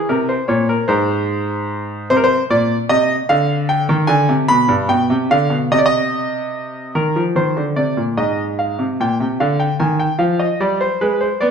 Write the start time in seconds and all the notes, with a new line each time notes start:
0.09 C3 A#4
0.29 C5
0.48 A#2 C#5
0.69 A#4
0.88 G#2 C5
2.10 C3 C5
2.17 A#4
2.24 C5
2.50 A#2 D5
2.89 C3 D#5
3.29 D3 F5
3.69 G5
3.89 D#3
4.07 D3 G#5
4.29 C3
4.48 B2 B5
4.68 G2
4.89 B2 G5
5.10 C3
5.31 D3 F5
5.50 B2
5.72 C3 D#5
5.79 D5
5.86 D#5
6.95 D#3 A#4
7.16 F3
7.36 D#3 C5
7.57 D3
7.76 C3 D5
7.97 A#2
8.17 G#2 D#5
8.59 F5
8.79 C3
9.00 A#2 G5
9.20 C3
9.40 D3 F5
9.60 G5
9.80 D#3 G#5
10.00 G5
10.19 F3 F5
10.39 D#5
10.60 G3 D5
10.81 C5
11.01 G#3 B4
11.21 C5
11.41 B3 D5